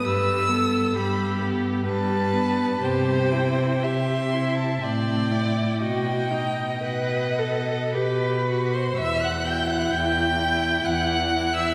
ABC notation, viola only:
X:1
M:3/4
L:1/8
Q:1/4=62
K:Em
V:1 name="Viola"
G, B, G, B, G, B, | G E G E C E | F ^D B A G F | z E2 E2 E |]